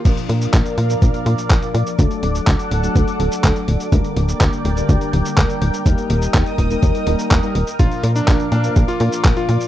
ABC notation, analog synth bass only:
X:1
M:4/4
L:1/8
Q:1/4=124
K:Bb
V:1 name="Analog synth bass" clef=bass
B,,, B,, B,,, B,, B,,, B,, B,,, B,, | D,, D,,, D,, D,,, D,, D,,, D,, D,,, | D,, D,,, D,, D,,, D,, D,,, D,, D,,, | E,, E,,, E,, E,,, E,, E,,, E,, E,,, |
B,,, B,, B,,, B,, B,,, B,, B,,, B,, |]